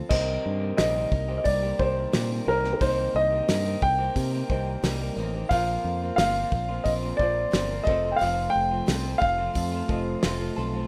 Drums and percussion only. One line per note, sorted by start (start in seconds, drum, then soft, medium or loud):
0.11 kick loud
0.11 crash loud
0.78 snare loud
0.78 open hi-hat medium
1.12 kick medium
1.45 kick medium
1.45 open hi-hat medium
1.79 kick medium
2.13 snare loud
2.13 open hi-hat soft
2.64 snare soft
2.81 kick loud
2.81 open hi-hat medium
3.49 snare loud
3.49 open hi-hat medium
3.82 kick medium
4.16 kick medium
4.16 open hi-hat medium
4.50 kick medium
4.84 snare medium
4.84 open hi-hat medium
5.51 kick loud
5.51 open hi-hat medium
6.18 snare loud
6.18 open hi-hat medium
6.52 kick medium
6.85 kick medium
6.85 open hi-hat soft
7.19 kick medium
7.53 snare loud
7.53 open hi-hat medium
7.87 kick loud
8.21 open hi-hat medium
8.88 snare loud
8.88 open hi-hat medium
9.22 kick medium
9.55 kick medium
9.55 open hi-hat medium
9.89 kick medium
10.23 snare loud
10.23 open hi-hat medium